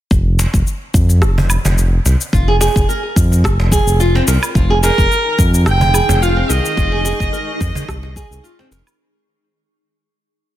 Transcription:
0.11 analog synth bass F1, kick, shaker
0.39 cajon slap, shaker
0.54 analog synth bass F1, kick, shaker
0.67 shaker
0.94 analog synth bass F2, kick, shaker
1.09 cajon slap, shaker
1.22 analog synth bass F1, cross-stick, shaker
1.38 cajon bass
1.50 low woodblock, shaker
1.65 analog synth bass F1, cajon bass, cajon slap, shaker
1.78 shaker
2.05 analog synth bass C2, cajon slap, shaker
2.21 shaker
2.33 analog synth bass F1, nylon-string guitar F4, kick, shaker
2.48 nylon-string guitar G#4
2.61 nylon-string guitar G#4, cajon slap, shaker
2.76 analog synth bass F1, kick, shaker
2.89 nylon-string guitar A#4, shaker
3.16 analog synth bass F2, kick, shaker
3.32 cajon slap, shaker
3.44 analog synth bass F1, kick, cross-stick, shaker
3.60 cajon slap
3.72 nylon-string guitar G#4, kick, shaker
3.87 analog synth bass F1, shaker
4.00 nylon-string guitar F4, shaker
4.15 nylon-string guitar C4, cajon slap
4.28 analog synth bass C2, nylon-string guitar A#4, cajon slap, shaker
4.43 low woodblock, shaker
4.55 analog synth bass F1, ambient pad D#4, nylon-string guitar F4, kick, shaker
4.70 nylon-string guitar G#4
4.76 ambient pad G#4
4.83 nylon-string guitar G#4, kamancheh A#4, cajon slap, shaker
4.98 analog synth bass F1, kick, shaker
5.11 nylon-string guitar A#4, shaker
5.18 ambient pad C#6
5.39 analog synth bass F2, kick, shaker
5.54 cajon slap, shaker
5.66 analog synth bass F1, kamancheh G5, cross-stick, shaker
5.81 cajon bass
5.94 nylon-string guitar G#4, low woodblock, shaker
6.09 analog synth bass F1, cajon bass, cajon slap, shaker
6.22 nylon-string guitar F4, kamancheh F5, shaker
6.37 nylon-string guitar C4
6.49 analog synth bass C2, nylon-string guitar A#4, kamancheh D#5, cajon slap, shaker
6.66 shaker
6.77 analog synth bass F1, nylon-string guitar F4, kick, shaker
6.92 nylon-string guitar G#4
7.05 nylon-string guitar G#4, cajon slap, shaker
7.20 analog synth bass F1, kick, shaker
7.33 nylon-string guitar A#4, shaker
7.61 analog synth bass F2, kick, shaker
7.75 cajon bass, cajon slap, shaker
7.88 analog synth bass C2, kick, cross-stick, shaker
8.03 cajon slap
8.16 nylon-string guitar G#4, kick, shaker
8.31 analog synth bass C2, shaker
8.44 nylon-string guitar F4, shaker
8.59 nylon-string guitar C4, cajon slap
8.71 analog synth bass F1, nylon-string guitar A#4, cajon slap, shaker
8.87 low woodblock, shaker

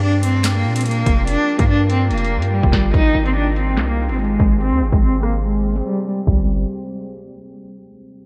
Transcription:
Already playing: 808-style bass G2, ambient pad F4 A#4 G5
0.02 cello D4
0.23 cello C4, closed hi-hat
0.44 snare, clap, closed hi-hat
0.54 cello A#3
0.65 808-style bass A#2
0.76 cello C4, closed hi-hat
0.81 closed hi-hat
0.86 cello A#3, closed hi-hat
0.91 closed hi-hat
1.06 808-style bass F1, kick, closed hi-hat
1.27 cello D4, closed hi-hat
1.59 808-style bass G2, cello A#3, kick, closed hi-hat
1.68 cello D4
1.90 cello C4, closed hi-hat
2.10 808-style bass F1, cello A#3, closed hi-hat
2.18 closed hi-hat
2.24 closed hi-hat
2.37 808-style bass G2
2.42 closed hi-hat
2.52 cello G3
2.63 808-style bass F1, kick
2.73 808-style bass G1, cello G3, kick, snare, clap, closed hi-hat
2.94 808-style bass G#1, ambient pad C4 G#4, cello D#4, kick, closed hi-hat
3.15 808-style bass G#1
3.26 cello C4, closed hi-hat
3.35 cello D4
3.56 cello C4, closed hi-hat
3.77 808-style bass C2, snare, clap, closed hi-hat
3.88 cello A#3
4.09 808-style bass G#1, cello C4, closed hi-hat
4.14 closed hi-hat
4.19 cello G#3, closed hi-hat
4.24 closed hi-hat
4.40 808-style bass G#1, kick, closed hi-hat
4.61 cello C4, closed hi-hat
4.72 808-style bass D#2
4.81 808-style bass G#1
4.92 808-style bass G#1, cello G#3, kick, closed hi-hat
5.02 cello C4
5.23 cello A#3, cross-stick, closed hi-hat
5.43 cello G#3, closed hi-hat
5.76 snare, closed hi-hat
5.86 cello G3
6.07 cello G3
6.27 808-style bass G1, cello G3, kick, floor tom, crash

